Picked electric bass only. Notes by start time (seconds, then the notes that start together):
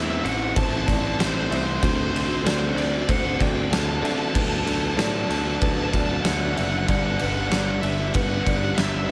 Already playing: E2
0.25 A1
0.56 A1
0.88 A1
1.19 A1
1.50 C2
1.83 D2
2.13 D2
2.45 D2
2.75 D2
3.09 D2
3.40 D2
3.71 D2
4.03 D3
4.35 D2
4.65 D2
4.97 A2
5.29 D2
5.62 D2
5.94 D2
6.26 D2
6.59 F#1
6.89 G1
7.22 G1
7.52 G1
7.83 G1
8.15 G1
8.47 G1
8.78 G1